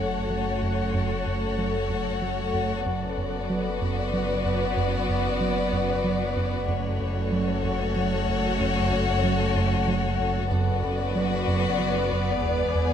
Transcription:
Already playing: F#1 F#2 A3 F#4 A4 C#5 F#5
0.00 F#2
0.30 F#3
0.62 F#2
0.94 F#2
1.26 F#2
1.58 F#3
1.90 F#2
2.22 F#3
2.54 F#2
2.85 F#1 F#2 B3 F#4 B4 D5 F#5
3.18 F#2
3.50 F#3
3.82 F#2
4.14 F#3
4.46 F#2
4.77 F#2
5.10 F#2
5.41 F#3
5.73 F#2
6.04 F#3
6.37 F#2
6.68 F#1 F#2 A3 F#4 A4 C#5 F#5
7.00 F#2
7.32 F#3
7.64 F#2
7.96 F#3
8.28 F#2
8.60 F#2
8.91 F#2
9.24 F#3
9.56 F#2
9.88 F#3
10.19 F#2
10.51 F#1 F#2 B3 F#4 B4 D5
10.83 F#2
11.15 F#3
11.48 F#2
11.80 F#3
12.12 F#2
12.43 E1 E2 G#4 G#5
12.75 E2

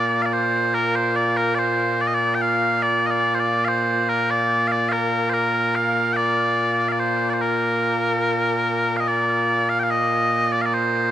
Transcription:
Already playing: A#2 A#3 D5
0.22 D5 F5
0.33 C5
0.75 A#4
0.96 C5
1.16 D5
1.37 A#4
1.55 C5 D5
2.01 D5
2.08 D#5
2.15 D5
2.35 G5
2.42 F5
2.83 D5
3.07 D#5
3.11 D5
3.34 C5
3.39 D5
3.65 C5 F5
4.09 A#4
4.30 D5
4.68 F5
4.72 D5
4.89 A#4 F5
5.30 A#4 C5
5.75 F5
6.13 D5 G5
6.89 D5 F5
6.99 C5
7.30 C5 D5
7.42 A#4
8.97 D#5 F5
9.08 D5
9.69 F5
9.79 G5
9.83 F5
9.90 D#5
10.52 D5
10.62 F5
10.66 D5
10.74 C5

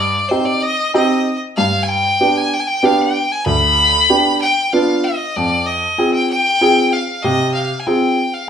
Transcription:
Already playing: G2 D5
0.29 C4 D#4 G4 C5
0.45 D5
0.62 D#5
0.94 C4 D#4 G4 D#5
1.57 G2 F5
1.83 G#5
1.89 G5
2.20 B3 D4 G4
2.38 G#5
2.54 G5
2.60 G#5
2.67 G5
2.83 B3 D4 G4 F5
3.01 G5
3.32 G#5
3.46 D2 B5
4.10 B3 D4 G4
4.42 G5
4.73 B3 D4 F4 F5
5.04 D#5
5.36 F2 D5
5.66 D#5
5.98 C4 F4 G#4
6.14 G5
6.30 G5
6.61 C4 F4 G#4
6.93 F5
7.23 C3 D#5
7.54 F5
7.80 G#5
7.87 C4 F4 G#4 G5
8.34 F5

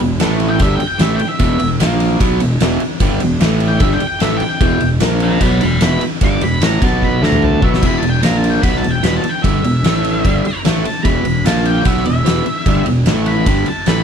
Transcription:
0.01 E1 E2 B2
0.20 A1 A2 E3 A3, snare, ride
0.40 ride
0.49 G5
0.59 G1 G2 D3 G3 E5, kick, ride
0.75 G5
0.80 muted fingered electric bass stroke, muted overdriven electric guitar stroke, ride
0.87 G5
0.99 A1 A2 E3 A3 E5, snare, ride
1.16 G5, muted overdriven electric guitar stroke, ride
1.21 muted fingered electric bass stroke
1.29 E5
1.39 E1 E2 B2 E3, kick, ride
1.59 E1 E2 B2, ride
1.79 A#1 A#2 F3 A#3, snare, ride
2.00 ride
2.20 B1 B2 F#3 B3, kick, ride
2.40 E1 E2 B2, ride
2.60 E1 E2 B2 E3, snare, ride
2.80 muted fingered electric bass stroke, muted overdriven electric guitar stroke, ride
3.00 G1 G2 D3 G3, kick, ride
3.20 E1 E2 B2, ride
3.40 A1 A2 E3 A3, snare, ride
3.60 ride
3.68 G5
3.80 G1 G2 D3 G3 E5, kick, ride
3.92 G5, snare
4.00 muted fingered electric bass stroke, muted overdriven electric guitar stroke, ride
4.07 G5
4.20 A1 A2 E3 A3 E5, snare, ride
4.36 G5, ride
4.42 muted overdriven electric guitar stroke, muted fingered electric bass stroke
4.49 G5
4.61 E1 E2 B2 E3, kick, ride
4.80 E1 E2 B2, ride
5.00 A#1 A#2 F3 A#3, snare, ride
5.20 G5 A#5, ride
5.41 B1 B2 F#3 B3 G5 B5, kick, ride
5.61 E1 E2 B2 B5 D6, ride
5.81 E1 E2 B2 E3 B5, snare, ride
6.01 muted fingered electric bass stroke, muted overdriven electric guitar stroke, ride
6.21 G1 G2 D3 G3 D6, kick, ride
6.41 E1 E2 B2 B5, ride
6.61 A1 A2 E3 A3 A#5, snare, ride
6.82 B1 B2 F#3 B3 A5, kick, ride
7.02 B5, kick
7.22 D2 D3 A3 D4 A#5, snare
7.32 mid tom
7.42 A5, mid tom
7.62 B1 B2 F#3 B3 E5, kick
7.74 snare
7.82 E1 E2 B2 E3 B5, kick, crash
7.98 A5
8.02 E1 E2 B2, ride
8.10 G5
8.23 A#1 A#2 F3 A#3 A#5, snare, ride
8.37 A5
8.44 ride
8.50 G5
8.63 B1 B2 F#3 B3 B5, kick, ride
8.76 A5, snare
8.83 E1 E2 B2, ride
8.90 G5
9.03 E1 E2 B2 E3 B5, snare, ride
9.16 A5
9.24 muted fingered electric bass stroke, muted overdriven electric guitar stroke, ride
9.29 G5
9.43 G1 G2 D3 G3 E5, kick, ride
9.64 E1 E2 B2, ride
9.84 A1 A2 E3 A3, snare, ride
10.04 ride
10.25 G1 G2 D3 G3, kick, ride
10.45 muted fingered electric bass stroke, muted overdriven electric guitar stroke, ride
10.65 A1 A2 E3 A3, snare, ride
10.85 A5, muted overdriven electric guitar stroke, muted fingered electric bass stroke, ride
11.04 E1 E2 B2 E3 B5, kick, ride
11.25 E1 E2 B2, ride
11.45 A#1 A#2 F3 A#3 A5, snare, ride
11.65 G5, ride
11.85 B1 B2 F#3 B3 E5, kick, ride
11.97 snare
12.05 E1 E2 B2 E5, ride
12.25 E1 E2 B2 E3, snare, ride
12.46 muted fingered electric bass stroke, muted overdriven electric guitar stroke, ride
12.66 G1 G2 D3 G3, kick, ride
12.86 E1 E2 B2, ride
13.06 A1 A2 E3 A3, snare, ride
13.26 B5, ride
13.46 G1 G2 D3 G3, kick, ride
13.66 A5, muted overdriven electric guitar stroke, muted fingered electric bass stroke, ride
13.86 A1 A2 E3 A3 B5, snare, ride

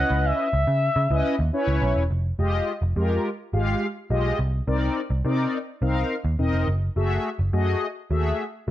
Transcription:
Already playing: C#4 E4 B4 D#5 F#5
0.10 C#2
0.25 E5
0.53 C#2
0.67 C#3
0.96 C#3
1.10 C#2 C#4 E4 B4 D#5
1.39 D#2
1.53 C#4 E4 B4 C#5
1.68 C#2
1.82 B1
1.96 E1
2.11 F1
2.38 F1 G#3 F4 G4 D#5
2.82 F1
2.96 F2 G#3 F4 G4 A#4
3.53 G#1 G#3 F4 G4 F5
4.10 B1 G#3 F4 G4 D#5
4.39 C2
4.67 C2 C4 D#4 A#4 D5
5.10 C2
5.24 C3 C4 D#4 A#4 D5
5.81 C2 C4 D#4 A#4 F5
6.25 D#2
6.39 E1 C4 D#4 A#4 D#5
6.53 F1
6.68 F#1
6.96 F#1 A3 F#4 G#4 E5
7.39 F#1
7.53 F#2 A3 F#4 G#4 D#5
8.10 D#2 A3 F#4 G#4 E5
8.67 A3 F#4

